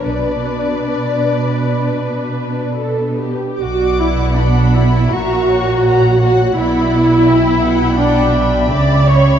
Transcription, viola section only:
X:1
M:4/4
L:1/8
Q:1/4=80
K:Bm
V:1 name="Viola section"
B6 A G | F E D E F3 F | E4 D2 d c |]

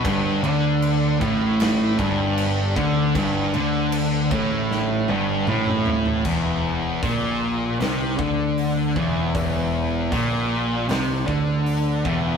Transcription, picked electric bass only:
X:1
M:4/4
L:1/8
Q:1/4=78
K:Clyd
V:1 name="Picked electric bass" clef=bass
G,,, D,,2 A,,,2 G,,,2 D,, | G,,, D,,2 A,,,2 G,,, A,,,2 | E,,,2 _B,,,2 C,, D,,2 E,,, | E,,,2 _B,,,2 C,, D,,2 E,,, |]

